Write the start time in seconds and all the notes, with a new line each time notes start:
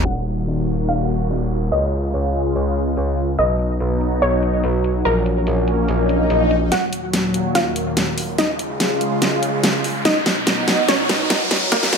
0.05 D#1 D#3 A#3 F#4 F#5, downlifter
0.47 closed hi-hat
0.89 F5
1.30 closed hi-hat
1.51 closed hi-hat
1.72 C#2 C#3 G#3 F4 D#5, closed hi-hat
1.93 closed hi-hat
2.13 closed hi-hat
2.34 closed hi-hat
2.55 closed hi-hat
2.76 closed hi-hat
2.97 closed hi-hat
3.18 closed hi-hat
3.39 B1 F#3 B3 D#4 D#5, closed hi-hat
3.59 closed hi-hat
3.80 closed hi-hat
4.01 closed hi-hat
4.22 C#5, closed hi-hat
4.43 closed hi-hat
4.64 closed hi-hat
4.84 closed hi-hat
5.05 A#1 A#3 C#4 A#4, closed hi-hat
5.26 closed hi-hat
5.47 closed hi-hat
5.68 closed hi-hat
5.88 closed hi-hat, swell
6.09 closed hi-hat
6.30 closed hi-hat
6.51 closed hi-hat
6.72 D#2 A#2 F#3 F#4 F#5, snare, closed hi-hat, riser
6.93 closed hi-hat
7.13 snare, closed hi-hat
7.34 closed hi-hat
7.55 F4 F5, snare, closed hi-hat
7.76 closed hi-hat
7.97 snare, closed hi-hat
8.18 open hi-hat
8.38 C#3 G#3 D#4 F4 D#5, snare, closed hi-hat
8.59 closed hi-hat
8.80 snare, closed hi-hat
9.01 closed hi-hat
9.22 snare, closed hi-hat
9.43 closed hi-hat
9.64 snare, closed hi-hat
9.84 open hi-hat
10.05 B2 F#3 D#4 D#5, snare, closed hi-hat
10.26 snare, closed hi-hat
10.47 snare, closed hi-hat
10.68 snare, closed hi-hat
10.88 C#4 C#5, snare, closed hi-hat
11.09 snare, closed hi-hat
11.30 snare, closed hi-hat
11.51 snare, open hi-hat
11.72 A#2 A#3 C#4 A#4, snare, closed hi-hat
11.83 snare
11.93 snare, closed hi-hat